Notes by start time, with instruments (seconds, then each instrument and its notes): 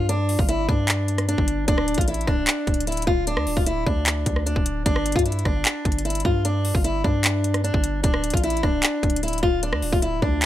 Already playing: 808-style bass G2
0.09 steel-string acoustic guitar D4, closed hi-hat
0.29 open hi-hat
0.39 808-style bass G1, steel-string acoustic guitar F4, kick
0.49 steel-string acoustic guitar E4, closed hi-hat
0.69 808-style bass G2, steel-string acoustic guitar D4, kick
0.88 clap, closed hi-hat
1.08 closed hi-hat
1.18 cross-stick, closed hi-hat
1.28 steel-string acoustic guitar D4, closed hi-hat
1.38 808-style bass G1, kick
1.48 closed hi-hat
1.68 808-style bass D1, steel-string acoustic guitar D4, kick, closed hi-hat
1.78 cross-stick
1.88 closed hi-hat
1.94 808-style bass A1, steel-string acoustic guitar F4, kick, closed hi-hat
2.01 closed hi-hat
2.08 steel-string acoustic guitar E4, closed hi-hat
2.14 closed hi-hat
2.21 closed hi-hat
2.27 808-style bass C1, steel-string acoustic guitar D4, kick, cross-stick
2.47 clap, closed hi-hat
2.67 808-style bass D1, kick, closed hi-hat
2.74 closed hi-hat
2.81 closed hi-hat
2.87 steel-string acoustic guitar E4, closed hi-hat
2.92 closed hi-hat
2.97 closed hi-hat
3.02 closed hi-hat
3.07 808-style bass D1, steel-string acoustic guitar F4, kick
3.27 steel-string acoustic guitar D4, closed hi-hat
3.37 808-style bass D2, cross-stick
3.47 808-style bass D1, open hi-hat
3.57 808-style bass D1, steel-string acoustic guitar F4, kick
3.66 steel-string acoustic guitar E4, closed hi-hat
3.86 808-style bass D2, steel-string acoustic guitar D4, kick
4.06 clap, closed hi-hat
4.26 808-style bass D2, kick, closed hi-hat
4.36 cross-stick
4.46 steel-string acoustic guitar D4, closed hi-hat
4.56 808-style bass D1, kick
4.66 closed hi-hat
4.86 808-style bass G1, steel-string acoustic guitar D4, kick, closed hi-hat
4.96 cross-stick
5.06 closed hi-hat
5.12 808-style bass G2, steel-string acoustic guitar F4, kick, closed hi-hat
5.19 closed hi-hat
5.26 steel-string acoustic guitar E4, closed hi-hat
5.32 closed hi-hat
5.39 closed hi-hat
5.45 808-style bass G1, steel-string acoustic guitar D4, kick, cross-stick
5.65 clap, closed hi-hat
5.85 808-style bass G1, kick, closed hi-hat
5.92 closed hi-hat
5.98 closed hi-hat
6.05 steel-string acoustic guitar E4, closed hi-hat
6.10 closed hi-hat
6.15 closed hi-hat
6.20 closed hi-hat
6.25 808-style bass G2, steel-string acoustic guitar F4, kick
6.45 steel-string acoustic guitar D4, closed hi-hat
6.65 open hi-hat
6.75 808-style bass G1, steel-string acoustic guitar F4, kick
6.84 steel-string acoustic guitar E4, closed hi-hat
7.04 808-style bass G2, steel-string acoustic guitar D4, kick
7.24 clap, closed hi-hat
7.44 closed hi-hat
7.54 cross-stick, closed hi-hat
7.64 steel-string acoustic guitar D4, closed hi-hat
7.74 808-style bass G1, kick
7.84 closed hi-hat
8.03 808-style bass D1, steel-string acoustic guitar D4, kick, closed hi-hat
8.14 cross-stick
8.24 closed hi-hat
8.30 808-style bass A1, steel-string acoustic guitar F4, kick, closed hi-hat
8.37 closed hi-hat
8.44 steel-string acoustic guitar E4, closed hi-hat
8.50 closed hi-hat
8.57 closed hi-hat
8.63 808-style bass C1, steel-string acoustic guitar D4, kick, cross-stick
8.83 clap, closed hi-hat
9.03 808-style bass D1, kick, closed hi-hat
9.10 closed hi-hat
9.16 closed hi-hat
9.23 steel-string acoustic guitar E4, closed hi-hat
9.28 closed hi-hat
9.33 closed hi-hat
9.38 closed hi-hat
9.43 808-style bass D1, steel-string acoustic guitar F4, kick
9.63 steel-string acoustic guitar D4, closed hi-hat
9.73 808-style bass D2, cross-stick
9.82 808-style bass D1, open hi-hat
9.92 808-style bass D1, steel-string acoustic guitar F4, kick
10.02 steel-string acoustic guitar E4, closed hi-hat
10.22 808-style bass D2, steel-string acoustic guitar D4, kick
10.42 clap, closed hi-hat